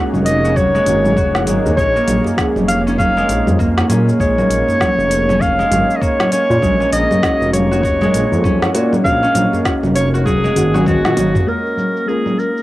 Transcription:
Already playing: G#3 A#3 C#4 D#4 F#4 G#4 C#5
0.14 F1, djembe tone, low conga, shaker
0.26 D#5, closed hi-hat, shaker
0.44 F#4, shaker
0.56 F#4 C#5, kick, low conga, shaker
0.75 G#3, djembe tone, shaker
0.85 G#1 G#3 C#4 F#4, closed hi-hat, djembe bass, shaker
1.03 G#3 C#4 G#4, djembe tone, low conga, shaker
1.17 F1 F#4, kick, shaker
1.35 snare, djembe tone, shaker
1.47 G#1 G#3, closed hi-hat, low conga, shaker
1.65 D#2, djembe bass, shaker
1.76 A#1 F3 G#3 A#3 C#4 G#4 C#5, kick, shaker
1.96 A#3, djembe slap, shaker
2.08 A#1, closed hi-hat, low conga, shaker
2.24 djembe slap, djembe bass, shaker
2.36 F3 G#3 A#3 C#4, kick, snare, shaker
2.40 G#4
2.56 F1, djembe tone, low conga, shaker
2.68 F5, closed hi-hat, shaker
2.87 C#4, shaker
2.99 C#4 F5, kick, low conga, shaker
3.17 G#3, djembe slap, shaker
3.29 A#1, closed hi-hat, djembe tone, shaker
3.47 F2, low conga, djembe bass, shaker
3.59 A#3, kick, shaker
3.78 snare, djembe bass, shaker
3.89 A#2 C#4, closed hi-hat, low conga, shaker
4.08 djembe tone, shaker
4.19 A#1 F3 G#3 A#3 C#4 G#4 C#5, kick, shaker
4.38 A#3, djembe slap, low conga, shaker
4.50 A#1, closed hi-hat, shaker
4.68 djembe slap, djembe bass, shaker
4.79 F3 G#3 A#3 C#4 G#4, kick, snare, low conga, shaker
4.98 F1, djembe tone, shaker
5.11 closed hi-hat, shaker
5.29 C#4, low conga, shaker
5.41 C#4 F5, kick, shaker
5.59 G#3, djembe tone, shaker
5.71 G#1, closed hi-hat, djembe bass, low conga, shaker
5.91 shaker
5.96 D#5
6.01 A#3 C#5, kick, shaker
6.20 snare, djembe tone, low conga, shaker
6.32 C#4 C#5, closed hi-hat, djembe tone, shaker
6.50 A#2, djembe bass, shaker
6.61 A#1 G#3 A#3 C#4 F#4, kick, low conga, shaker
6.80 C#4, djembe slap, shaker
6.92 A#1 D#5, closed hi-hat, djembe slap, shaker
7.11 djembe slap, low conga, djembe bass, shaker
7.21 G#3 C#4 F#4, kick, snare, shaker
7.41 F1, djembe tone, shaker
7.53 C#5, closed hi-hat, low conga, shaker
7.71 F#4, shaker
7.83 F#4, kick, shaker
8.01 G#3, djembe slap, low conga, shaker
8.14 A#1, closed hi-hat, djembe tone, shaker
8.32 F2, djembe bass, shaker
8.44 C#4, kick, low conga, shaker
8.62 snare, djembe bass, shaker
8.74 A#2 F#4, closed hi-hat, shaker
8.93 djembe tone, low conga, shaker
9.04 A#1 G#3 C#4 F#4 F5, kick, shaker
9.23 C#4, djembe slap, shaker
9.35 A#1, closed hi-hat, djembe slap, low conga, shaker
9.53 djembe slap, djembe bass, shaker
9.63 G#3 C#4, kick, snare, shaker
9.67 F#4
9.83 F1, djembe tone, low conga, shaker
9.96 C#5, closed hi-hat, shaker
10.14 F#4, shaker
10.26 F#4 G#4, kick, low conga, shaker
10.44 G#3, djembe tone, shaker
10.55 G#1 G#3 C#4 F#4, closed hi-hat, djembe bass, shaker
10.72 G#3 C#4 F#4 G#4, low conga, shaker
10.86 G#3 F#4, kick, high tom, shaker
11.05 A#2, snare, high tom, djembe tone, shaker
11.17 G#1 C#4, closed hi-hat, djembe tone, low conga, shaker
11.34 mid tom, djembe bass, shaker
11.46 G#3 A#3 C#4 F4 A#4, shaker
11.66 shaker
11.77 low conga, shaker
11.97 D#4, shaker
12.06 G#3 A#3 C#4 F4 G#4 A#4, shaker
12.26 low conga, shaker
12.39 A#4, shaker
12.57 shaker

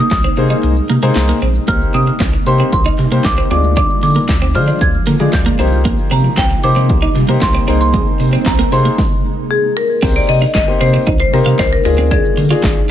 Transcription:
Already playing: C3 G#3 A#3 D#4 G#4 C5
0.00 D#6
0.11 C2 D#6, kick, snare, clap, closed hi-hat, shaker
0.24 C4, shaker
0.37 C3 A#3 D#4 G#4 C5, muted clean electric guitar stroke, closed hi-hat, shaker
0.50 D#4, shaker
0.63 C2, muted clean electric guitar stroke, closed hi-hat, shaker
0.77 shaker
0.90 C3 A#3, closed hi-hat, shaker
1.02 C3 G#3 A#3 D#4 G#4 C5, shaker
1.15 C2, muted clean electric guitar stroke, snare, clap, closed hi-hat, shaker
1.29 A#3, shaker
1.42 A#1 C4, closed hi-hat, shaker
1.55 shaker
1.68 C2 G3 A#3 D#4 G4 C5 F6, kick, closed hi-hat, shaker
1.81 shaker
1.94 C3 C4 D#6, closed hi-hat, shaker
2.07 muted clean electric guitar stroke, shaker
2.20 C2 C4, kick, snare, clap, closed hi-hat, shaker
2.34 muted clean electric guitar stroke, shaker
2.46 C3 A#3 D#4 G4 C5 C6, closed hi-hat, shaker
2.60 C4, shaker
2.72 C2 C6, kick, closed hi-hat, shaker
2.86 D#4, shaker
2.98 C3, muted clean electric guitar stroke, clap, closed hi-hat, shaker
3.12 C3 A#3 D#4 G4 C5, shaker
3.24 C2 D6, muted clean electric guitar stroke, kick, snare, clap, closed hi-hat, shaker
3.38 C4, shaker
3.50 D2 D3 F3 G#3 C4 D4 F4 D5 D6, closed hi-hat, shaker
3.64 shaker
3.77 D4 D6, kick, closed hi-hat, shaker
3.90 shaker
4.03 D3 D6, muted clean electric guitar stroke, open hi-hat, shaker
4.16 A#3, shaker
4.29 D2, kick, snare, clap, closed hi-hat, shaker
4.42 C4, shaker
4.55 D3 G#3 D4 F4 C5 F6, muted clean electric guitar stroke, open hi-hat, shaker
4.68 D4, shaker
4.81 D2 G#6, muted clean electric guitar stroke, kick, closed hi-hat, shaker
4.94 shaker
5.07 D3 A#3, clap, open hi-hat, shaker
5.20 D3 G#3 D4 F4 D5, shaker
5.33 D2 G6, muted clean electric guitar stroke, kick, snare, clap, closed hi-hat, shaker
5.46 A#3, shaker
5.59 C2 C3 G3 A#3 C4 D#4 G4 C5, open hi-hat, shaker
5.72 shaker
5.85 A#3, kick, closed hi-hat, swell, shaker
5.98 shaker
6.11 C3 C4 A#5, open hi-hat, shaker
6.24 muted clean electric guitar stroke, shaker
6.37 C2 C4 G5, kick, snare, clap, closed hi-hat, shaker
6.50 muted clean electric guitar stroke, shaker
6.63 C3 A#3 D#4 G4 C5 D6, open hi-hat, shaker
6.76 C4, shaker
6.89 C2, kick, closed hi-hat, shaker
7.02 D#4, shaker
7.15 C3, muted clean electric guitar stroke, clap, open hi-hat, shaker
7.29 C3 A#3 D#4 G4 C5, shaker
7.41 C2 C6, muted clean electric guitar stroke, kick, snare, clap, closed hi-hat, shaker
7.55 C4, shaker
7.68 C2 A#3 C4 D#4 G#4 C5, open hi-hat, shaker
7.81 C6, shaker
7.94 G#3, kick, closed hi-hat, shaker
8.07 shaker
8.20 C3, muted clean electric guitar stroke, open hi-hat, shaker
8.33 C4, shaker
8.46 C2 A#5, kick, snare, clap, closed hi-hat, shaker
8.59 A#3, shaker
8.72 C3 A#3 D#4 G#4 C5 C6, muted clean electric guitar stroke, open hi-hat, shaker
8.85 A#3, shaker
8.98 kick, snare
9.51 G#4
9.77 A#4
10.02 C2 C3 G3 A#3 C4 D#4 G4 C5, kick, closed hi-hat, crash, shaker
10.16 D5, shaker
10.29 C3 D#5, muted clean electric guitar stroke, open hi-hat, shaker
10.42 D#4, shaker
10.55 G1 D#5, muted clean electric guitar stroke, kick, snare, clap, closed hi-hat, shaker
10.68 A#3 C4 D#4 G4 C5, shaker
10.81 C3 C4 C5, open hi-hat, shaker
10.94 C4, shaker
11.07 C2 D#4, kick, closed hi-hat, shaker
11.20 C5, muted clean electric guitar stroke, shaker
11.33 C3 A#3 C4 D#4 G4 A#4 C5, open hi-hat, shaker
11.46 C3 F4, shaker
11.59 C2 D#4 C5, kick, snare, clap, closed hi-hat, shaker
11.72 A#4, shaker
11.85 D2 D3 F3 G#3 D4 F4 G#4 A#4, muted clean electric guitar stroke, open hi-hat, shaker
11.98 C4, shaker
12.11 D4 G#4, kick, closed hi-hat, shaker
12.25 shaker
12.37 D3, muted clean electric guitar stroke, open hi-hat, shaker
12.50 D4 F4 G#4, shaker
12.63 G#1, muted clean electric guitar stroke, kick, snare, clap, closed hi-hat, shaker
12.77 shaker

